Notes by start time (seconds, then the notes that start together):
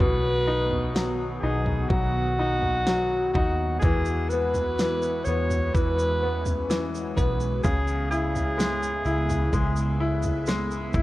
0.00 B1 B2 D#3 F#3 B3 F#4 B4, kick, floor tom
0.48 D#4
0.71 floor tom
0.95 F#3, snare
1.40 B1 D#4 G#4
1.66 floor tom
1.89 B1 F#3 F#4, kick
2.39 D#4
2.62 floor tom
2.87 F#3, snare
3.33 D#2 D#4 F#4, kick, floor tom
3.79 E2 G#4, kick, floor tom, shaker
3.83 E3 G#3 B3
4.06 shaker
4.29 B3 B4, shaker
4.54 floor tom, shaker
4.79 E3, snare, shaker
5.02 shaker
5.24 E2 B3 C#5, shaker
5.50 floor tom, shaker
5.74 E2 E3 C#4 B4, kick, shaker
5.99 shaker
6.23 B3
6.46 floor tom, shaker
6.70 E3, snare, shaker
6.95 shaker
7.16 B1 B3 B4, kick, floor tom, shaker
7.40 shaker
7.63 C#2 C#3 B3 E4 G#4, kick, floor tom, shaker
7.87 shaker
8.11 E4 G#4, shaker
8.36 floor tom, shaker
8.58 G#3, snare, shaker
8.83 shaker
9.05 C#2 E4, shaker
9.30 floor tom, shaker
9.53 C#2 G#3, kick, shaker
9.76 shaker
10.00 E4
10.22 floor tom, shaker
10.47 G#3, snare, shaker
10.71 shaker
10.93 G#1 E4, kick, floor tom, shaker